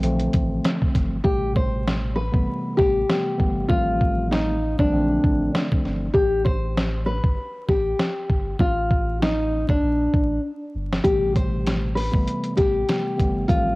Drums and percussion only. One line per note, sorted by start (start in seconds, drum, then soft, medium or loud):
0.03 closed hi-hat medium
0.20 closed hi-hat soft
0.33 kick medium
0.33 closed hi-hat medium
0.64 snare loud
0.64 closed hi-hat medium
0.82 kick medium
0.95 kick medium
0.95 snare soft
0.95 closed hi-hat medium
1.25 kick loud
1.56 kick medium
1.88 snare loud
2.34 kick loud
2.79 kick loud
2.79 snare soft
3.10 snare loud
3.40 kick medium
3.70 kick loud
4.01 kick medium
4.32 snare loud
4.79 kick loud
5.24 kick medium
5.55 snare loud
5.72 kick medium
5.85 snare soft
6.15 kick loud
6.46 kick medium
6.77 snare loud
7.24 kick loud
7.69 kick medium
7.69 snare soft
7.99 snare loud
8.30 kick medium
8.59 kick loud
8.91 kick medium
9.22 snare loud
9.69 kick loud
10.14 kick medium
10.92 snare medium
11.04 kick loud
11.04 closed hi-hat loud
11.36 kick medium
11.36 closed hi-hat medium
11.67 snare loud
11.67 closed hi-hat medium
11.97 open hi-hat medium
12.14 kick loud
12.28 closed hi-hat medium
12.44 closed hi-hat soft
12.58 kick loud
12.58 snare soft
12.58 closed hi-hat medium
12.89 snare loud
12.89 closed hi-hat medium
13.19 kick medium
13.19 closed hi-hat medium
13.49 kick loud
13.49 closed hi-hat medium